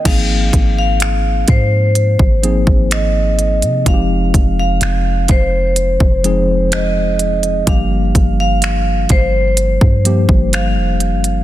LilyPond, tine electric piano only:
\new Staff \with { instrumentName = "Tine electric piano" } { \time 4/4 \key aes \lydian \tempo 4 = 63 << { g''16 r2. r8. | r1 | r1 | } \\ { <f bes c' ees' aes'>4. r4 <f bes c' ees' aes'>4~ <f bes c' ees' aes'>16 r16 | <f aes c' ees' ges' g'>4. r4 <f aes c' ees' aes'>4~ <f aes c' ees' aes'>16 r16 | <f g bes d' g'>4. r4 <f g bes d' g'>4~ <f g bes d' g'>16 r16 | } >> }